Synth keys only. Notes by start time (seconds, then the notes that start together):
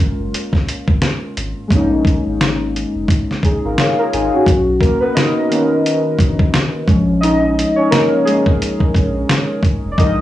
Already playing: G#3 A#3 C#4 F4 A#4
1.68 G#3 A#3
1.73 C#4 D#4
3.44 D#4 G#4
3.65 F4 A#4
3.79 G#4 C#5 F5
3.99 F4 A#4
4.14 D#4 G#4 G#5
4.34 C#4 F#4
4.80 A#3 A#4
5.00 B3 B4
5.15 D#4 D#5
5.49 D#3 A#3 C#4 A#4
6.88 F3 G#3 C#4
7.21 D#4 D#5
7.76 C#4 C#5
7.90 A#3 A#4
8.25 G#3 G#4
9.92 D5
9.98 F3 G#3 D#4 A#4 D#5